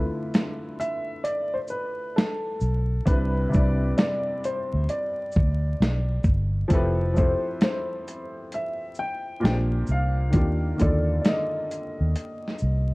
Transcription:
Already playing: upright piano D3 A3 E4 F4 B4
0.34 snare, closed hi-hat
0.80 upright piano E5, closed hi-hat, shaker
1.24 upright piano D5, closed hi-hat
1.54 upright piano C5
1.68 upright piano B4, shaker
2.16 upright piano A4, snare, closed hi-hat
2.60 fingered electric bass B1, shaker
3.06 fingered electric bass C2, upright piano C3 G3 D4 B4, kick, closed hi-hat
3.10 upright piano E4 B4
3.49 upright piano C3 G3 D4
3.53 fingered electric bass C2, upright piano E4 D5, kick, shaker
3.98 upright piano D5, snare, closed hi-hat
4.44 upright piano C5, closed hi-hat, shaker
4.74 fingered electric bass D2
4.89 upright piano D5, closed hi-hat
5.32 shaker
5.36 fingered electric bass D2, kick
5.80 fingered electric bass B1, snare, closed hi-hat
6.24 fingered electric bass G1, kick, shaker
6.68 fingered electric bass F1, upright piano F3 C4 E4 G4, kick, closed hi-hat
6.73 upright piano A4 B4
7.14 upright piano F3 C4 E4 G4 C5, shaker
7.18 upright piano A4 C5, kick
7.61 upright piano C5, snare, closed hi-hat
8.08 closed hi-hat, shaker
8.52 upright piano E5, closed hi-hat
8.95 shaker
8.99 upright piano G5
9.40 upright piano A#2 A#3 D4
9.44 fingered electric bass A#1, upright piano G4 G#4 C5 G5, snare, closed hi-hat
9.87 fingered electric bass C2, shaker
9.91 upright piano F5
10.30 fingered electric bass D#2, upright piano D#3 A#3 D4, kick, closed hi-hat
10.35 upright piano F4 G4
10.76 upright piano D3 D#3 A#3, closed hi-hat, shaker
10.81 fingered electric bass D#2, upright piano F4 A4 D5, kick
11.21 upright piano D5, closed hi-hat
11.25 upright piano D#5, snare
11.71 closed hi-hat, shaker
12.01 fingered electric bass D#2
12.16 closed hi-hat
12.48 snare
12.58 fingered electric bass C2, shaker

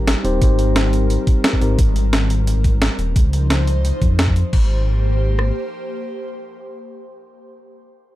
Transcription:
Already playing: detuned saw bass G#1, analog synth pad G3 C4 A#4, tine electric piano C4 D#4 G4 A#4
0.08 snare, closed hi-hat
0.24 detuned saw bass D#1, tine electric piano C4 D#4 G4 C5, closed hi-hat
0.40 detuned saw bass G#1, tine electric piano C4 D#4 G4 C5, kick, closed hi-hat
0.59 closed hi-hat
0.76 snare, closed hi-hat
0.93 closed hi-hat
1.10 closed hi-hat
1.27 kick, closed hi-hat
1.44 snare, closed hi-hat
1.53 kick
1.61 detuned saw bass G#1, tine electric piano C4 D#4 G4 A#4, closed hi-hat
1.79 detuned saw bass G#1, kick, closed hi-hat
1.96 closed hi-hat
2.13 snare, closed hi-hat
2.30 closed hi-hat
2.47 closed hi-hat
2.56 detuned saw bass G#1
2.64 kick, closed hi-hat
2.82 snare, closed hi-hat
2.99 detuned saw bass D#1, closed hi-hat
3.16 detuned saw bass C#2, analog synth pad F3 D#4 C5, kick, closed hi-hat
3.33 closed hi-hat
3.50 snare, closed hi-hat
3.67 closed hi-hat
3.85 closed hi-hat
4.02 detuned saw bass F2, kick, closed hi-hat
4.11 detuned saw bass F2
4.19 snare, closed hi-hat
4.28 kick
4.36 closed hi-hat
4.53 detuned saw bass G#1, analog synth pad A#3 G4 C5, kick, crash
5.39 cross-stick

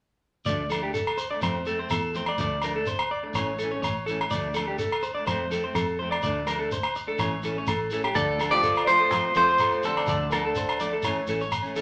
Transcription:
0.45 fingered electric bass D2, clean electric guitar F3 A3 D4 D5, shekere
0.70 clean electric guitar F3 A3 D4 A4, low agogo, shekere
0.82 clean electric guitar A3 D4 G4
0.94 clean electric guitar A4, shekere
1.07 low agogo
1.17 clean electric guitar C5, shekere
1.31 clean electric guitar A3 D4 D5
1.41 fingered electric bass F2, clean electric guitar F3 A3 C4 C5, low agogo, shekere
1.65 clean electric guitar A3 C4 A4, muted clean electric guitar stroke, shekere
1.78 clean electric guitar A3 C4 C5
1.90 fingered electric bass E2, clean electric guitar A4, low agogo, shekere
2.13 clean electric guitar F3 A3 C4 C5, shekere
2.26 clean electric guitar D5, low agogo
2.38 fingered electric bass D2, clean electric guitar F3 A3 D4 D5, shekere
2.62 clean electric guitar F3 A3 A#4, low agogo, shekere
2.66 clean electric guitar D4
2.76 clean electric guitar A3 D4 A4
2.86 clean electric guitar C5, shekere
2.99 low agogo
3.11 clean electric guitar D5
3.23 clean electric guitar A3 D4, muted clean electric guitar stroke
3.33 fingered electric bass A1, clean electric guitar E3 A3 C#4 C#5, low agogo, shekere
3.59 clean electric guitar E3 A3 A4, shekere
3.64 clean electric guitar C#4
3.71 clean electric guitar C#4 C#5
3.76 clean electric guitar A3
3.82 fingered electric bass A1, clean electric guitar C#5, low agogo, shekere
4.06 clean electric guitar E3 A3 A4, shekere
4.11 clean electric guitar C#4
4.21 low agogo
4.31 fingered electric bass D2, clean electric guitar F3 A3 D4 D5, shekere
4.54 clean electric guitar F3 A3 A4, low agogo, shekere
4.59 clean electric guitar D4
4.68 clean electric guitar A3 D4 G4
4.78 clean electric guitar A4, shekere
4.92 low agogo
5.02 clean electric guitar C5, shekere
5.15 clean electric guitar D4 D5
5.19 clean electric guitar A3
5.27 fingered electric bass F2, clean electric guitar F3 A3 C4 C5, low agogo, shekere
5.50 clean electric guitar F3 A3 C4 A4, shekere
5.64 clean electric guitar A3 C4 C5
5.75 fingered electric bass F2, clean electric guitar A4, low agogo, shekere
5.99 clean electric guitar F3 A3 C5
6.03 clean electric guitar C4
6.11 clean electric guitar D5, low agogo
6.22 fingered electric bass D2, clean electric guitar A3 D4 D5, muted clean electric guitar stroke, shekere
6.47 clean electric guitar F3 A3 D4 A#4, low agogo, shekere
6.59 clean electric guitar A3 D4 A4
6.71 clean electric guitar C5, shekere
6.83 low agogo
6.95 muted clean electric guitar stroke, shekere
7.07 clean electric guitar A3 D4 A4
7.18 fingered electric bass A1, clean electric guitar E3 A3 C#4 C#5, low agogo, shekere
7.43 clean electric guitar E3 A3 C#4 A4, shekere
7.55 clean electric guitar A3 C#4 C#5
7.67 fingered electric bass A1, clean electric guitar A4, low agogo, shekere
7.90 clean electric guitar E3 A3 C#4 A4, shekere
8.04 clean electric guitar G4, low agogo
8.14 fingered electric bass D2, tenor saxophone D3, clean electric guitar F3 A3 D4 A4 D5, shekere
8.39 clean electric guitar F3 A3 D4 A4, low agogo, shekere
8.51 tenor saxophone F3, clean electric guitar A3 D4 G4 D5
8.63 clean electric guitar A4, shekere
8.75 low agogo, shekere
8.87 clean electric guitar F3 A3 D4 C5, tenor saxophone F3, shekere
9.00 clean electric guitar A4
9.10 fingered electric bass F2, clean electric guitar F3 A3 C4 C5, low agogo, shekere
9.35 fingered electric bass F2, tenor saxophone F3, clean electric guitar A3 C4 A4 C5, shekere
9.48 clean electric guitar C5, shekere
9.58 clean electric guitar A4, low agogo, shekere
9.71 clean electric guitar C4, shekere
9.76 clean electric guitar A3
9.83 tenor saxophone D3, clean electric guitar F3 A3 A4 C5, shekere
9.87 clean electric guitar C4
9.97 clean electric guitar D5, low agogo
10.07 fingered electric bass D2, clean electric guitar F3 A3 D4 D5, shekere
10.31 tenor saxophone D3, clean electric guitar F3 A3 D4 A4 A#4, low agogo, shekere
10.44 clean electric guitar A3 D4 A4
10.55 clean electric guitar C5, shekere
10.68 low agogo, shekere
10.80 clean electric guitar F3 A3 D4 D5, shekere
10.93 clean electric guitar A4
11.02 fingered electric bass A1, clean electric guitar E3 A3 C#4 C#5, low agogo, shekere
11.27 fingered electric bass A1, clean electric guitar E3 A3 C#4 A4, shekere
11.40 clean electric guitar C#5, shekere
11.52 low agogo, shekere
11.62 clean electric guitar A3 C#4, shekere
11.76 clean electric guitar E3 A3 C#4 A4, shekere

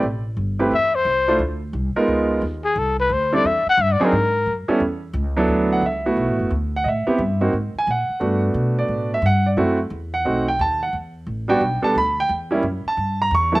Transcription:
0.03 upright bass A1
0.37 upright bass G1
0.59 grand piano A3 C4 E4 G4 B4
0.71 upright bass E2, trumpet E5
0.95 trumpet C5
1.05 upright bass C2
1.28 grand piano A3 D4 E4 F4 C5
1.39 upright bass D2
1.73 upright bass C2
1.95 grand piano G#3 B3 D#4 F4 A#4, muted upright bass stroke
2.08 upright bass C#2
2.42 upright bass D#2
2.65 trumpet G#4
2.76 upright bass C2, trumpet A4
3.00 trumpet B4
3.10 upright bass D2, trumpet C5
3.32 grand piano G3 C4 D4 E4 A4, trumpet D5
3.44 upright bass E2, trumpet E5
3.66 trumpet F#5, muted upright bass stroke
3.77 upright bass G2
3.82 trumpet E5
3.93 trumpet D5
4.00 grand piano F#3 C4 D4 D#4 G#4, muted upright bass stroke
4.05 trumpet A#4
4.12 upright bass G#2
4.46 upright bass F#2
4.68 grand piano G3 B3 C#4 E4 A4, muted upright bass stroke
4.80 upright bass E2
5.13 upright bass C#2
5.37 grand piano F#3 B3 D4 E4 A4
5.48 upright bass D2
5.72 grand piano F#5
5.82 upright bass C#2
5.86 grand piano E5
6.06 grand piano A3 B3 E4 F#4
6.17 upright bass B1
6.28 upright bass A1
6.39 upright bass F#1
6.51 upright bass D2
6.76 grand piano F#5
6.84 upright bass A2, grand piano D#5
6.88 grand piano E5
7.07 grand piano B3 C4 E4 G4, muted upright bass stroke
7.18 upright bass G2
7.41 grand piano A#3 C4 D#4 F#4
7.53 upright bass G#2
7.75 grand piano G#5, muted upright bass stroke
7.87 upright bass A#2, grand piano F#5
8.09 muted upright bass stroke
8.20 upright bass G2, grand piano A3 B3 D4 F#4
8.54 upright bass B2
8.79 grand piano D5
8.88 upright bass A2
9.14 grand piano E5
9.22 upright bass G2, grand piano F#5
9.46 grand piano D5
9.57 upright bass F#2, grand piano A3 C4 E4 F#4
9.90 upright bass E2
10.14 grand piano F#5
10.25 upright bass B1, grand piano A3 C4 D#4 F#4
10.48 grand piano G5
10.59 upright bass D#2, grand piano A5
10.83 grand piano F#5
10.93 upright bass E2
11.27 upright bass A1
11.48 grand piano G3 B3 D4 F#4 G5
11.61 upright bass B1
11.82 grand piano G3 B3 D4 A4 A5, muted upright bass stroke
11.95 upright bass D2, grand piano B5
12.20 grand piano G5
12.29 upright bass E2
12.51 grand piano G3 A#3 C#4 E4
12.63 upright bass F#2
12.85 grand piano A5, muted upright bass stroke
12.97 upright bass G2
13.22 grand piano A#5
13.31 upright bass E2, grand piano C#6
13.52 grand piano F#3 A3 B3 E4 A5

